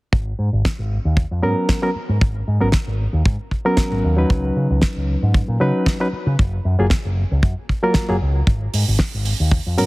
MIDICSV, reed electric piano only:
0, 0, Header, 1, 2, 480
1, 0, Start_track
1, 0, Tempo, 521739
1, 114, Time_signature, 4, 2, 24, 8
1, 9073, End_track
2, 0, Start_track
2, 0, Title_t, "Reed electric piano"
2, 0, Program_c, 0, 4
2, 1310, Note_on_c, 0, 54, 74
2, 1311, Note_on_c, 0, 59, 71
2, 1315, Note_on_c, 0, 61, 71
2, 1318, Note_on_c, 0, 70, 86
2, 1649, Note_off_c, 0, 54, 0
2, 1650, Note_off_c, 0, 59, 0
2, 1651, Note_off_c, 0, 61, 0
2, 1653, Note_off_c, 0, 70, 0
2, 1676, Note_on_c, 0, 54, 80
2, 1678, Note_on_c, 0, 59, 74
2, 1682, Note_on_c, 0, 61, 74
2, 1683, Note_on_c, 0, 70, 88
2, 1742, Note_off_c, 0, 54, 0
2, 1742, Note_off_c, 0, 59, 0
2, 1745, Note_off_c, 0, 61, 0
2, 1745, Note_off_c, 0, 70, 0
2, 2395, Note_on_c, 0, 54, 75
2, 2398, Note_on_c, 0, 59, 73
2, 2402, Note_on_c, 0, 61, 69
2, 2404, Note_on_c, 0, 70, 84
2, 2461, Note_off_c, 0, 54, 0
2, 2463, Note_off_c, 0, 59, 0
2, 2465, Note_off_c, 0, 61, 0
2, 2466, Note_off_c, 0, 70, 0
2, 3358, Note_on_c, 0, 54, 87
2, 3361, Note_on_c, 0, 59, 75
2, 3364, Note_on_c, 0, 61, 78
2, 3366, Note_on_c, 0, 70, 92
2, 3809, Note_off_c, 0, 54, 0
2, 3811, Note_off_c, 0, 59, 0
2, 3812, Note_off_c, 0, 61, 0
2, 3814, Note_off_c, 0, 70, 0
2, 3831, Note_on_c, 0, 54, 69
2, 3839, Note_on_c, 0, 61, 61
2, 3844, Note_on_c, 0, 63, 62
2, 3850, Note_on_c, 0, 71, 76
2, 5122, Note_off_c, 0, 54, 0
2, 5126, Note_off_c, 0, 61, 0
2, 5129, Note_off_c, 0, 63, 0
2, 5131, Note_off_c, 0, 71, 0
2, 5154, Note_on_c, 0, 54, 81
2, 5157, Note_on_c, 0, 61, 71
2, 5158, Note_on_c, 0, 63, 75
2, 5163, Note_on_c, 0, 71, 86
2, 5491, Note_off_c, 0, 54, 0
2, 5493, Note_off_c, 0, 61, 0
2, 5493, Note_off_c, 0, 63, 0
2, 5496, Note_off_c, 0, 71, 0
2, 5521, Note_on_c, 0, 54, 80
2, 5524, Note_on_c, 0, 61, 76
2, 5526, Note_on_c, 0, 63, 73
2, 5529, Note_on_c, 0, 71, 93
2, 5584, Note_off_c, 0, 54, 0
2, 5586, Note_off_c, 0, 61, 0
2, 5587, Note_off_c, 0, 63, 0
2, 5588, Note_off_c, 0, 71, 0
2, 6242, Note_on_c, 0, 54, 77
2, 6245, Note_on_c, 0, 58, 73
2, 6248, Note_on_c, 0, 65, 73
2, 6253, Note_on_c, 0, 68, 84
2, 6305, Note_off_c, 0, 54, 0
2, 6306, Note_off_c, 0, 58, 0
2, 6308, Note_off_c, 0, 65, 0
2, 6310, Note_off_c, 0, 68, 0
2, 7199, Note_on_c, 0, 54, 86
2, 7202, Note_on_c, 0, 58, 79
2, 7205, Note_on_c, 0, 65, 77
2, 7209, Note_on_c, 0, 70, 94
2, 7410, Note_off_c, 0, 54, 0
2, 7411, Note_off_c, 0, 58, 0
2, 7413, Note_off_c, 0, 65, 0
2, 7415, Note_off_c, 0, 70, 0
2, 7437, Note_on_c, 0, 54, 77
2, 7440, Note_on_c, 0, 58, 73
2, 7442, Note_on_c, 0, 65, 71
2, 7447, Note_on_c, 0, 68, 86
2, 7502, Note_off_c, 0, 54, 0
2, 7504, Note_off_c, 0, 58, 0
2, 7505, Note_off_c, 0, 65, 0
2, 7507, Note_off_c, 0, 68, 0
2, 8993, Note_on_c, 0, 54, 83
2, 8996, Note_on_c, 0, 59, 71
2, 8997, Note_on_c, 0, 61, 72
2, 9002, Note_on_c, 0, 70, 90
2, 9073, Note_off_c, 0, 54, 0
2, 9073, Note_off_c, 0, 59, 0
2, 9073, Note_off_c, 0, 61, 0
2, 9073, Note_off_c, 0, 70, 0
2, 9073, End_track
0, 0, End_of_file